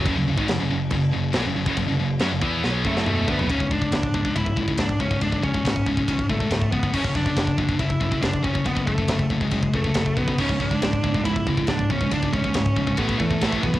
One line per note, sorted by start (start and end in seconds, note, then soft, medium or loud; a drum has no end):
0.05 0.15 F#1 medium
0.05 0.16 F#2 medium
0.05 0.16 C#3 loud
0.05 kick loud
0.05 crash medium
0.17 0.27 F#1 medium
0.17 0.27 F#2 medium
0.17 0.27 C#3 medium
0.28 0.38 F#1 medium
0.28 0.38 F#2 medium
0.28 0.38 C#3 medium
0.38 0.48 G#1 loud
0.38 0.48 G#2 loud
0.38 0.48 D#3 loud
0.38 kick loud
0.48 0.59 F#1 medium
0.48 0.59 F#2 medium
0.48 0.59 C#3 medium
0.48 snare loud
0.48 crash medium
0.60 0.70 F#1 medium
0.60 0.69 F#2 medium
0.60 0.70 C#3 medium
0.71 0.91 F#1 medium
0.71 0.87 F#2 medium
0.71 0.88 C#3 medium
0.90 1.11 F#1 medium
0.90 1.09 F#2 medium
0.90 1.09 C#3 medium
0.90 kick medium
0.90 crash medium
1.13 1.33 F#1 medium
1.13 1.30 F#2 medium
1.13 1.30 C#3 medium
1.33 1.45 B1 loud
1.33 1.44 B2 medium
1.33 1.45 F#3 loud
1.33 snare loud
1.33 crash medium
1.46 1.55 F#1 medium
1.46 1.55 F#2 medium
1.46 1.56 C#3 medium
1.56 1.66 F#1 medium
1.56 1.66 F#2 medium
1.56 1.67 C#3 medium
1.66 1.76 F#1 loud
1.66 1.76 F#2 medium
1.66 1.77 C#3 medium
1.66 kick loud
1.77 1.87 F#1 medium
1.77 1.87 F#2 medium
1.77 1.87 C#3 medium
1.77 kick loud
1.77 crash medium
1.88 1.98 F#1 medium
1.88 1.98 F#2 medium
1.88 1.99 C#3 medium
1.99 2.19 F#1 medium
1.99 2.16 F#2 medium
1.99 2.16 C#3 medium
2.19 2.31 F#2 medium
2.19 2.31 F#3 loud
2.19 2.31 C#4 loud
2.19 snare loud
2.19 crash medium
2.31 2.41 F#1 medium
2.31 2.42 F#2 medium
2.31 2.41 C#3 medium
2.41 2.62 E2 loud
2.41 2.62 E3 medium
2.41 2.63 B3 loud
2.41 2.63 E4 medium
2.41 kick loud
2.63 2.84 B1 medium
2.63 2.84 B2 medium
2.63 2.84 F#3 loud
2.63 2.85 B3 loud
2.63 snare medium
2.84 3.05 F#1 medium
2.84 3.04 F#2 medium
2.84 3.05 C#3 medium
2.84 3.06 F#3 medium
2.84 3.06 A3 loud
2.84 kick medium
2.97 snare medium
3.05 3.27 E1 medium
3.05 3.26 E2 medium
3.05 3.26 B2 loud
3.05 3.27 E3 medium
3.05 3.29 A3 medium
3.05 mid tom medium
3.27 3.38 D2 medium
3.27 3.37 D3 loud
3.27 3.37 A3 loud
3.27 3.49 B3 medium
3.27 kick loud
3.38 3.49 F#1 medium
3.38 3.48 F#2 medium
3.38 3.48 C#3 medium
3.38 floor tom medium
3.49 3.80 C#1 medium
3.49 3.58 C#2 medium
3.49 3.57 G#2 loud
3.49 3.59 C#3 loud
3.49 3.72 C#4 medium
3.49 kick medium
3.49 ride bell medium
3.59 3.70 C#2 medium
3.59 3.69 G#2 medium
3.59 kick medium
3.71 3.80 C#2 medium
3.71 3.80 G#2 medium
3.71 4.36 D4 medium
3.71 kick medium
3.81 3.92 C#2 medium
3.81 3.92 G#2 medium
3.81 kick medium
3.92 4.08 C#1 medium
3.92 4.12 C#2 medium
3.92 4.12 G#2 medium
3.92 kick loud
3.92 snare loud
3.92 ride bell medium
4.03 kick medium
4.14 4.29 C#1 medium
4.14 4.24 C#2 medium
4.14 4.23 G#2 medium
4.14 kick medium
4.25 4.34 C#2 medium
4.25 4.34 G#2 medium
4.25 kick medium
4.35 4.51 C#1 loud
4.35 4.55 C#2 medium
4.35 4.55 G#2 medium
4.35 4.78 E4 loud
4.35 kick medium
4.35 ride bell medium
4.46 kick medium
4.56 4.73 C#1 medium
4.56 4.67 C#2 medium
4.56 4.66 G#2 medium
4.56 kick medium
4.68 4.78 C#2 medium
4.68 4.77 G#2 medium
4.68 kick medium
4.77 4.94 C#1 medium
4.77 4.98 C#2 medium
4.77 4.98 G#2 medium
4.77 5.00 D4 medium
4.77 kick medium
4.77 snare loud
4.77 ride bell medium
4.89 kick medium
5.00 5.15 C#1 medium
5.00 5.10 C#2 medium
5.00 5.09 G#2 medium
5.00 5.22 C#4 medium
5.00 kick medium
5.11 5.20 C#2 medium
5.11 5.20 G#2 medium
5.11 kick medium
5.21 5.37 C#1 medium
5.21 5.30 C#2 medium
5.21 5.30 G#2 medium
5.21 5.43 D4 loud
5.21 kick medium
5.21 ride bell medium
5.31 5.42 C#2 medium
5.31 5.41 G#2 medium
5.31 kick medium
5.42 5.59 C#1 loud
5.42 5.53 C#2 medium
5.42 5.52 G#2 medium
5.42 6.25 C#4 loud
5.42 kick medium
5.54 5.64 C#2 medium
5.54 5.64 G#2 medium
5.54 kick medium
5.65 5.80 C#1 medium
5.65 5.84 C#2 medium
5.65 5.84 G#2 medium
5.65 kick medium
5.65 snare loud
5.65 ride bell medium
5.76 kick medium
5.86 6.02 C#1 medium
5.86 5.97 C#2 medium
5.86 5.97 G#2 medium
5.86 kick medium
5.97 6.08 C#2 medium
5.97 6.08 G#2 medium
5.97 kick medium
6.08 6.23 C#1 medium
6.08 6.27 C#2 medium
6.08 6.28 G#2 medium
6.08 kick medium
6.08 ride bell medium
6.19 kick medium
6.30 6.45 G#1 medium
6.30 6.40 C#2 medium
6.30 6.40 G#2 medium
6.30 6.72 A3 medium
6.30 kick medium
6.40 6.50 C#2 medium
6.40 6.50 G#2 medium
6.40 kick medium
6.51 6.66 C#1 medium
6.51 6.70 C#2 medium
6.51 6.70 G#2 medium
6.51 kick medium
6.51 snare loud
6.51 ride bell medium
6.62 kick medium
6.72 6.88 G#1 medium
6.72 6.83 C#2 medium
6.72 6.82 G#2 medium
6.72 6.92 B3 medium
6.72 kick medium
6.83 6.93 C#2 medium
6.83 6.94 G#2 medium
6.83 kick medium
6.94 7.25 F#1 medium
6.94 7.03 F#2 medium
6.94 7.03 C#3 loud
6.94 7.04 F#3 loud
6.94 7.15 C#4 loud
6.94 kick medium
6.94 crash medium
7.04 7.15 F#2 medium
7.04 7.14 C#3 medium
7.04 kick medium
7.15 7.26 F#2 medium
7.15 7.26 C#3 medium
7.15 7.79 D4 loud
7.15 kick medium
7.26 7.36 F#2 medium
7.26 7.37 C#3 medium
7.26 kick medium
7.37 7.52 F#1 medium
7.37 7.56 F#2 medium
7.37 7.57 C#3 medium
7.37 kick loud
7.37 snare loud
7.37 ride bell medium
7.47 kick medium
7.58 7.74 F#1 medium
7.58 7.68 F#2 medium
7.58 7.68 C#3 medium
7.58 kick medium
7.69 7.78 F#2 medium
7.69 7.79 C#3 medium
7.69 kick medium
7.79 7.95 F#1 loud
7.79 7.99 F#2 medium
7.79 7.99 C#3 medium
7.79 8.22 E4 loud
7.79 kick medium
7.79 ride bell medium
7.90 kick medium
8.00 8.17 F#1 loud
8.00 8.10 F#2 medium
8.00 8.10 C#3 medium
8.00 kick medium
8.11 8.20 F#2 medium
8.11 8.21 C#3 medium
8.11 kick medium
8.21 8.38 F#1 medium
8.21 8.42 F#2 medium
8.21 8.41 C#3 medium
8.21 8.43 D4 loud
8.21 kick medium
8.21 snare loud
8.21 ride bell medium
8.33 kick medium
8.43 8.60 F#1 loud
8.43 8.52 F#2 medium
8.43 8.53 C#3 medium
8.43 8.66 C#4 medium
8.43 kick medium
8.54 8.63 F#2 medium
8.54 8.64 C#3 medium
8.54 kick medium
8.64 8.81 F#1 loud
8.64 8.75 F#2 medium
8.64 8.74 C#3 medium
8.64 8.87 B3 loud
8.64 kick medium
8.64 ride bell medium
8.75 8.86 F#2 medium
8.75 8.86 C#3 medium
8.75 kick medium
8.87 9.03 F#1 medium
8.87 8.97 F#2 medium
8.87 8.97 C#3 medium
8.87 9.43 A3 medium
8.87 kick loud
8.98 9.08 F#2 medium
8.98 9.08 C#3 medium
8.98 kick medium
9.08 9.25 F#1 medium
9.08 9.29 F#2 medium
9.08 9.29 C#3 medium
9.08 kick medium
9.08 snare loud
9.08 ride bell medium
9.19 kick medium
9.30 9.46 F#1 medium
9.30 9.41 F#2 medium
9.30 9.41 C#3 medium
9.30 kick medium
9.41 9.51 F#2 medium
9.41 9.52 C#3 medium
9.41 9.70 G#3 medium
9.41 kick medium
9.51 9.68 F#1 loud
9.51 9.72 F#2 medium
9.51 9.72 C#3 medium
9.51 kick medium
9.51 ride bell medium
9.63 kick medium
9.73 9.90 C#2 medium
9.73 9.84 F#2 medium
9.73 9.83 C#3 medium
9.73 10.18 A3 loud
9.73 kick medium
9.84 9.95 F#2 medium
9.84 9.96 C#3 medium
9.84 kick medium
9.94 10.11 F#1 medium
9.94 10.15 F#2 medium
9.94 10.16 C#3 medium
9.94 kick medium
9.94 snare loud
9.94 ride bell medium
10.06 kick medium
10.17 10.33 B1 medium
10.17 10.27 F#2 medium
10.17 10.27 C#3 medium
10.17 10.40 B3 medium
10.17 kick medium
10.28 10.38 F#2 medium
10.28 10.39 C#3 medium
10.28 kick medium
10.38 10.70 C#1 medium
10.38 10.48 C#2 loud
10.38 10.49 G#2 loud
10.38 10.49 C#3 loud
10.38 10.60 C#4 loud
10.38 kick medium
10.38 crash medium
10.49 10.60 C#2 medium
10.49 10.59 G#2 medium
10.49 kick medium
10.60 10.71 C#2 medium
10.60 10.70 G#2 medium
10.60 10.71 C#4 loud
10.60 kick medium
10.71 10.81 C#2 medium
10.71 10.81 G#2 medium
10.71 11.24 D4 loud
10.71 kick medium
10.82 10.98 C#1 medium
10.82 11.01 C#2 medium
10.82 11.02 G#2 medium
10.82 kick medium
10.82 snare loud
10.82 ride bell medium
10.93 kick medium
11.03 11.20 C#1 medium
11.03 11.14 C#2 medium
11.03 11.14 G#2 medium
11.03 kick medium
11.14 11.24 C#2 medium
11.14 11.25 G#2 medium
11.14 kick medium
11.25 11.41 C#1 medium
11.25 11.45 C#2 medium
11.25 11.45 G#2 medium
11.25 11.68 E4 medium
11.25 kick medium
11.25 ride bell medium
11.36 kick medium
11.47 11.62 C#1 medium
11.47 11.57 C#2 medium
11.47 11.57 G#2 medium
11.47 kick medium
11.57 11.68 C#2 medium
11.57 11.68 G#2 medium
11.57 kick medium
11.67 11.84 C#1 medium
11.67 11.88 C#2 medium
11.67 11.88 G#2 medium
11.67 11.89 D4 medium
11.67 kick medium
11.67 snare loud
11.67 ride bell medium
11.79 kick medium
11.90 12.06 C#1 medium
11.90 12.00 C#2 medium
11.90 12.00 G#2 medium
11.90 12.13 C#4 medium
11.90 kick medium
12.01 12.10 C#2 medium
12.01 12.11 G#2 medium
12.01 kick medium
12.11 12.27 C#1 medium
12.11 12.22 C#2 medium
12.11 12.21 G#2 medium
12.11 12.33 D4 loud
12.11 kick medium
12.11 ride bell medium
12.22 12.31 C#2 medium
12.22 12.31 G#2 medium
12.22 kick medium
12.33 12.49 C#1 medium
12.33 12.43 C#2 medium
12.33 12.42 G#2 medium
12.33 13.00 C#4 medium
12.33 kick medium
12.44 12.53 C#2 medium
12.44 12.54 G#2 medium
12.44 kick medium
12.54 12.70 C#1 medium
12.54 12.74 C#2 medium
12.54 12.74 G#2 medium
12.54 kick medium
12.54 snare loud
12.54 ride bell medium
12.66 kick medium
12.76 12.92 C#1 loud
12.76 12.87 C#2 medium
12.76 12.86 G#2 medium
12.76 kick medium
12.87 12.96 C#2 medium
12.87 12.97 G#2 medium
12.87 kick medium
12.97 13.14 A1 medium
12.97 13.18 A2 medium
12.97 13.18 E3 loud
12.97 13.18 A3 medium
12.97 13.18 B3 medium
12.97 kick medium
12.97 ride bell medium
13.09 kick medium
13.19 13.35 E2 medium
13.19 13.30 A2 medium
13.19 13.30 E3 medium
13.19 13.62 A3 medium
13.19 kick medium
13.31 13.40 A2 medium
13.31 13.41 E3 medium
13.31 kick medium
13.41 13.57 A1 medium
13.41 13.62 A2 medium
13.41 13.62 E3 loud
13.41 13.62 A3 loud
13.41 kick medium
13.41 snare loud
13.41 ride bell medium
13.52 kick medium
13.62 13.79 B1 medium
13.62 13.74 A2 medium
13.62 13.73 E3 medium
13.62 13.79 B3 medium
13.62 kick medium
13.74 13.79 A2 medium
13.74 13.79 E3 medium
13.74 kick medium